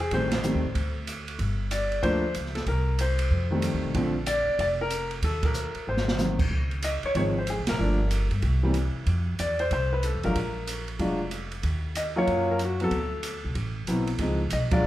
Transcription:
0.00 G#4
0.11 A1 D#3 G3 A3 C4 C5, kick, ride
0.31 C5, snare, ride
0.43 D#3 G3 A3 C4, hi-hat pedal
0.55 D#2
0.65 A2
0.75 D2, kick, ride
1.07 hi-hat pedal, ride
1.28 ride
1.39 G1, kick, ride
1.71 D5, hi-hat pedal, ride
1.92 ride
2.03 D2 F3 A3 A#3 D4 C5, kick, ride
2.34 C#2, hi-hat pedal, ride
2.46 snare
2.55 A4, snare, ride
2.66 C2 A#4, kick, ride
2.99 C5, hi-hat pedal, ride
3.19 ride
3.31 F2, kick
3.51 D#3 G3 A3 C4
3.62 hi-hat pedal, ride
3.74 D#2
3.85 B1
3.94 A#1 D3 F3 A3 C4, kick, ride
4.26 D5, hi-hat pedal, ride
4.48 muted upright bass stroke
4.59 F1 D5, kick, ride
4.81 A#4
4.90 hi-hat pedal, ride
5.11 ride
5.22 D#2 A4, kick, ride
5.43 A#4, kick, ride
5.54 hi-hat pedal
5.75 muted upright bass stroke, ride
5.87 G#1 C5
5.97 snare
6.08 snare
6.18 D#3 F#3 A#3 C4, snare, hi-hat pedal
6.39 kick, crash
6.51 C#2, kick
6.71 ride
6.82 D#5, hi-hat pedal, ride
7.03 C#5, muted upright bass stroke, ride
7.15 G#1 D#3 F3 G#3 C4 C#5, kick, ride
7.38 C5
7.47 G#4, hi-hat pedal, ride
7.58 C2
7.67 F#1 A#4, snare, ride
7.79 G1 F3 A3 A#3 D4
8.11 hi-hat pedal, ride
8.31 G2, ride
8.42 C2, kick, ride
8.63 E3 G3 A#3 C4
8.74 hi-hat pedal, ride
8.95 muted upright bass stroke
9.06 F2, kick, ride
9.39 E2 D5, hi-hat pedal, ride
9.59 C5, ride
9.71 C2 C5, kick, ride
9.93 B4
10.03 A4, hi-hat pedal, ride
10.14 E2
10.23 A1 F#3 G#3 D4 F4 A#4, ride
10.35 A#1, kick, ride
10.67 hi-hat pedal, ride
10.88 ride
10.99 F1 F#3 G#3 D4 F4, kick, ride
11.31 hi-hat pedal, ride
11.52 ride
11.63 D#2, kick, ride
11.95 D#5, hi-hat pedal, ride
12.16 F#3 A#3 C#4 F4 C#5
12.27 F#2, kick, ride
12.51 A#4
12.59 hi-hat pedal, ride
12.65 F#4
12.80 F#3 B3 C4 F#4 A4, ride
12.91 D2, kick, ride
13.23 hi-hat pedal, ride
13.44 C2
13.55 A1, kick, ride
13.87 B1 F#3 B3 C4 E4, hi-hat pedal, ride
14.07 ride
14.18 C#2 F3 G#3 C4 D#4, kick, ride
14.50 B1 D#5, hi-hat pedal, ride
14.71 F#3 G#3 D4 F4 D5, kick, ride
14.84 A#1

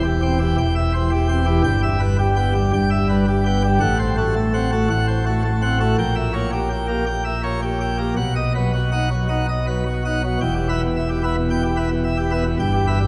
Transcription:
Already playing: E1 E2
0.05 G4
0.22 C4 G5
0.40 E3 G4
0.58 E1 E2 G5
0.75 E5
0.94 E3 C5
1.11 G4
1.29 C4 G5
1.46 E3 G4
1.64 G1 G2 G5
1.83 E5
2.00 G3 B4
2.19 G4
2.36 B3 G5
2.55 G3 G4
2.73 G1 G2 G5
2.91 E5
3.09 G3 B4
3.28 G4
3.46 B3 G5
3.64 G3 G4
3.80 A1 A2 F#5
3.99 C5
4.17 A3 F#4
4.36 A3
4.54 C4 F#5
4.72 A3 F#4
4.90 A1 A2 F#5
5.08 C5
5.26 A3 F#4
5.45 A3
5.62 C4 F#5
5.80 A3 F#4
5.98 A#1 A#2 G5
6.16 E5
6.33 A#3 C#5
6.52 G4
6.70 G5
6.88 A#3 G4
7.06 G5
7.25 E5
7.43 A#3 C#5
7.62 G4
7.80 G5
7.98 A#3 G4
8.17 B1 B2 F#5
8.36 D#5
8.55 F#3 B4
8.73 F#4
8.92 D#4 F#5
9.11 F#3 F#4
9.29 D#4 F#5
9.49 D#5
9.67 F#3 B4
9.86 F#4
10.05 D#4 F#5
10.24 F#3 F#4
10.41 E1 E2 G5
10.55 G4
10.69 B4 E5
10.83 B2
10.97 E5
11.09 G4
11.23 B3 B4 E5
11.37 B2
11.50 B2 G5
11.63 G4
11.77 B4 E5
11.91 B2
12.04 E5
12.17 G4
12.31 B3 B4 E5
12.45 B2
12.60 G1 G2 G5
12.73 G4
12.87 B4 E5
13.00 G3

